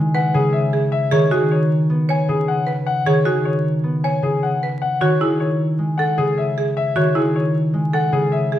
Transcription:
Already playing: harp C#3 D#3 G#3
0.14 marimba B4, grand piano F#5
0.34 harp C#3, grand piano G#4
0.53 grand piano E5
0.73 marimba G#4
0.92 grand piano E5
1.12 harp D#3, marimba G#4, grand piano C#5
1.31 marimba F#4, grand piano G#4
1.51 grand piano C#5
1.90 harp B3
2.09 marimba C#5, grand piano G#5
2.28 harp C#3, grand piano G#4
2.48 grand piano F#5
2.67 marimba B4
2.86 grand piano F#5
3.06 harp D#3, marimba G#4, grand piano C#5
3.25 marimba F#4, grand piano G#4
3.45 grand piano C#5
3.84 harp B3
4.04 marimba C#5, grand piano G#5
4.22 harp C#3, grand piano G#4
4.43 grand piano F#5
4.63 marimba B4
4.82 grand piano F#5
5.01 harp D#3, marimba F#4, grand piano C#5
5.20 marimba E4, grand piano G#4
5.40 grand piano C#5
5.79 harp G#3
5.98 marimba A4, grand piano F#5
6.18 harp C#3, grand piano G#4
6.38 grand piano E5
6.58 marimba G#4
6.77 grand piano E5
6.95 harp D#3, marimba F#4, grand piano C#5
7.15 marimba E4, grand piano G#4
7.36 grand piano C#5
7.74 harp G#3
7.93 marimba A4, grand piano F#5
8.12 harp C#3, grand piano G#4
8.32 grand piano E5
8.52 marimba G#4

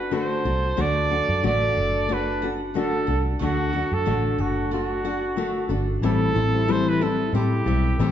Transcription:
Already playing: fingered electric bass F#1, mandolin A3 D4 A4 F#5, nylon-string guitar D4 F#4 A4, trumpet B4
0.11 nylon-string guitar D3 A3 D4 F#4 A4, mandolin A4, trumpet C5
0.45 fingered electric bass C2, mandolin D4, nylon-string guitar D4 F#4 A4
0.77 fingered electric bass D2, nylon-string guitar D3 A3 D4 F#4 A4, mandolin A3 F#5
0.81 trumpet D5
1.10 nylon-string guitar D4 F#4 A4, mandolin A4
1.28 fingered electric bass F#2
1.43 fingered electric bass A1, nylon-string guitar D3 A3 D4 F#4 A4, mandolin D4, trumpet D5
1.76 fingered electric bass F#1, mandolin A4
2.09 nylon-string guitar A3 D4 F#4 A4, mandolin D4
2.13 trumpet B4
2.42 nylon-string guitar D4 F#4 A4, mandolin F#5
2.74 nylon-string guitar D3 A3 D4 F#4 A4, mandolin A4, trumpet A4
3.07 fingered electric bass C2, mandolin D4, nylon-string guitar D4 F#4 A4
3.39 fingered electric bass D2, nylon-string guitar D3 A3 D4 F#4 A4, mandolin A3 F#5
3.44 trumpet F#4
3.73 nylon-string guitar D4 F#4 A4, mandolin A4
3.92 fingered electric bass F#2, trumpet A4
4.05 fingered electric bass A1, nylon-string guitar D3 A3 D4 F#4 A4, mandolin D4
4.38 fingered electric bass F#1, trumpet F#4, mandolin A4
4.71 nylon-string guitar A3 D4 F#4 A4, mandolin D4, trumpet F#4
5.05 nylon-string guitar D4 F#4 A4, mandolin F#5
5.36 nylon-string guitar D3 A3 D4 F#4 A4, mandolin A4
5.69 fingered electric bass G1, mandolin D4, nylon-string guitar D4 F#4 A4
6.01 fingered electric bass A1, nylon-string guitar A2 E3 G3 C4 E4 A4, felt piano G3 C4 E4 A4, mandolin G3
6.06 trumpet A4
6.34 fingered electric bass A1, nylon-string guitar G3 C4 E4 A4, mandolin C5
6.53 felt piano G3 C4 E4 A4
6.68 nylon-string guitar A2 E3 G3 C4 E4 A4, trumpet C5, mandolin E5
6.89 trumpet B4
7.01 nylon-string guitar G3 C4 E4 A4, mandolin E4, trumpet A4
7.33 fingered electric bass A2, nylon-string guitar G3 C4 E4 A4, trumpet G4, mandolin C5
7.66 fingered electric bass B1, felt piano G3 C4 E4 G4, nylon-string guitar G3 C4 E4 A4, mandolin E5
7.98 fingered electric bass A1, nylon-string guitar A2 E3 G3 C4 E4 A4, mandolin C5

